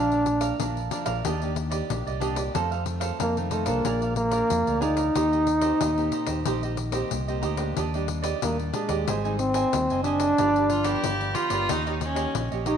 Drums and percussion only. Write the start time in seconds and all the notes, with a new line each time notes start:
0.12 pandeiro
0.26 pandeiro
0.41 pandeiro
0.60 pandeiro
0.77 pandeiro
0.91 pandeiro
1.06 pandeiro
1.25 pandeiro
1.42 pandeiro
1.56 pandeiro
1.72 pandeiro
1.90 pandeiro
2.07 pandeiro
2.21 pandeiro
2.36 pandeiro
2.55 pandeiro
2.72 pandeiro
2.86 pandeiro
3.01 pandeiro
3.20 pandeiro
3.37 pandeiro
3.51 pandeiro
3.66 pandeiro
3.85 pandeiro
4.02 pandeiro
4.16 pandeiro
4.32 pandeiro
4.50 pandeiro
4.67 pandeiro
4.82 pandeiro
4.97 pandeiro
5.15 pandeiro
5.33 pandeiro
5.47 pandeiro
5.61 pandeiro
5.81 pandeiro
5.98 pandeiro
6.12 pandeiro
6.27 pandeiro
6.45 pandeiro
6.63 pandeiro
6.77 pandeiro
6.92 pandeiro
7.11 pandeiro
7.28 pandeiro
7.43 pandeiro
7.57 pandeiro
7.77 pandeiro
7.94 pandeiro
8.08 pandeiro
8.24 pandeiro
8.42 pandeiro
8.60 pandeiro
8.74 pandeiro
8.89 pandeiro
9.08 pandeiro
9.25 pandeiro
9.39 pandeiro
9.54 pandeiro
9.73 pandeiro
9.90 pandeiro
10.04 pandeiro
10.20 pandeiro
10.38 pandeiro
10.56 pandeiro
10.70 pandeiro
10.84 pandeiro
11.04 pandeiro
11.21 pandeiro
11.35 pandeiro
11.50 pandeiro
11.69 pandeiro
11.87 pandeiro
12.01 pandeiro
12.16 pandeiro
12.35 pandeiro
12.52 pandeiro
12.66 pandeiro